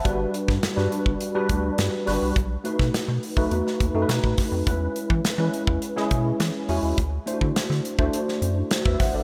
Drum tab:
HH |x-x-x-x-x-x-x-o-|x-x-x-o-x-x-x-o-|x-x-x-x-x-x-x-o-|x-x-x-x-x-x-x-o-|
SD |---ooo------o-o-|---oo----o--o-o-|----o----o--o---|----oo---o--o-o-|
BD |o--o---o--o-----|o--o---o--o--oo-|o--o---o--o-----|o--o---o-----oo-|